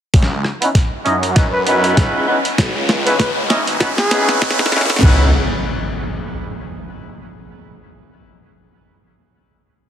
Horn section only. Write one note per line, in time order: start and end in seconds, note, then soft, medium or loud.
0.61 0.68 B3 medium
0.61 0.68 C#4 medium
0.61 0.68 D#4 medium
0.61 0.68 E4 medium
0.61 0.68 B4 medium
1.05 1.15 C#4 medium
1.05 1.14 D#4 medium
1.05 1.15 E4 medium
1.05 1.15 D#5 medium
1.36 1.45 B3 medium
1.36 1.45 C#4 medium
1.36 1.45 D#4 medium
1.36 1.45 E4 medium
1.36 1.45 B4 loud
1.66 2.25 B3 medium
1.66 2.25 C#4 medium
1.66 2.25 D#4 medium
1.66 2.25 E4 medium
1.66 2.25 B4 loud
2.27 2.37 B3 medium
2.27 2.37 C#4 medium
2.27 2.37 D#4 medium
2.27 2.37 E4 medium
2.27 2.37 B4 medium
3.06 3.13 B3 medium
3.06 3.13 C#4 medium
3.06 3.13 D#4 medium
3.06 3.13 E4 medium
3.06 3.13 B4 loud
3.50 3.59 C#4 medium
3.50 3.59 D#4 medium
3.50 3.59 E4 medium
3.50 3.59 D#5 medium
3.80 3.90 B3 medium
3.80 3.90 C#4 medium
3.80 3.90 D#4 medium
3.80 3.90 E4 medium
3.80 3.90 B4 loud
4.11 4.69 B3 medium
4.11 4.69 C#4 medium
4.11 4.69 D#4 medium
4.11 4.69 E4 medium
4.11 4.69 B4 loud
4.72 4.82 B3 medium
4.72 4.82 C#4 medium
4.72 4.82 D#4 medium
4.72 4.82 E4 medium
4.72 4.82 B4 loud
5.03 5.27 B3 medium
5.03 5.27 C#4 medium
5.03 5.27 D#4 medium
5.03 5.27 E4 medium
5.03 5.27 B4 loud